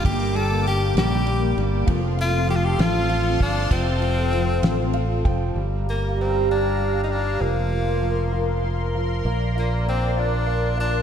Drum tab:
RD |xxxxxx|xxxxxx|xxxxxx|------|
SD |---o--|---o--|---o--|------|
BD |o-----|o----o|o----o|------|

RD |------|------|
SD |------|------|
BD |------|------|